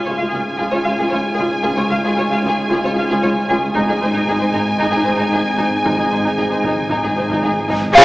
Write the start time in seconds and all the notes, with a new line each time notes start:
Already playing: G#2 G#3 C#4 F4 G#5
0.05 C#2 F4 C#5
0.18 C#2 F4 F5
0.30 C#2 G#4
0.34 C#2 F4
0.58 C#2 F4 G#4
0.71 C#2 F4 C#5
0.84 C#2 F4 F5
0.98 C#2 F4 G#4
1.10 C#2 F4 C#5
1.35 C#2 G#4
1.39 C#2 F4
1.63 C#2 F4 G#4
1.77 C#2 F4 C#5
1.89 C#2 F4 F5
2.04 C#2 F4 G#4
2.17 C#2 F4 C#5
2.30 C#2 F4 F5
2.43 C#2 F4
2.47 G#4
2.70 C#2 F4 G#4
2.84 C#2 F4 C#5
2.95 C#2 F4 F5
3.10 C#2 F4 G#4
3.22 C#2 F4 C#5
3.49 C#2 F4 G#4
3.73 G#1 G#2 G#3 C4 D#4 G#5, taiko
3.89 G#2 D#4 G#4
3.98 G#2 C5
4.02 G#1 G#2 D#4
4.14 G#2 D#4
4.21 G#2
4.27 G#1 G#2 D#4 G#4
4.39 G#2 D#4 C5
4.51 G#1 G#2 D#4
4.74 G#2
4.79 G#1 G#2 D#4
4.92 G#2 G#4
4.96 D#4
5.03 G#1 G#2 C5
5.08 G#2 D#4
5.17 G#2 D#4
5.32 G#1 G#2 D#4 G#4
5.40 G#2
5.48 G#2
5.56 G#1 G#2 D#4
5.63 G#2
5.70 G#2
5.78 G#2
5.85 G#1 G#2 D#4, taiko
5.92 G#2
5.98 G#2 D#4 G#4
6.08 G#1 G#2 C5
6.12 G#2 D#4
6.23 G#2 D#4
6.27 G#2
6.37 G#1 G#2 D#4 G#4
6.45 G#2
6.49 G#2 D#4 C5
6.59 G#2 D#4
6.64 G#1 G#2 D#4, taiko
6.74 G#2
6.82 G#2
6.89 G#1 G#2 D#4, taiko
6.96 G#2
7.03 G#2 D#4 G#4
7.12 G#2
7.16 G#1 G#2 D#4 C5
7.27 G#2 D#4, taiko
7.31 G#2 D#4
7.41 G#1 G#2 D#4 G#4
7.46 G#2
7.57 G#2
7.64 G#2
7.69 G#1 G#2 D#4, taiko
7.79 G#2
7.86 G#2
7.95 C#2 G#2 C#4 F4 G#4 C#5 F5 G#5, concert bass drum, taiko, crash